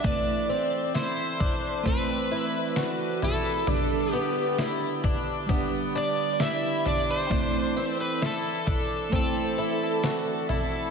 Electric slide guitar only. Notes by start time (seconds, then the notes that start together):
0.06 D5
0.97 C5
1.88 B4
3.25 A4
4.14 G4
5.98 D5
6.42 E5
6.88 D5
7.11 C5
8.01 B4
8.26 A4
9.16 A4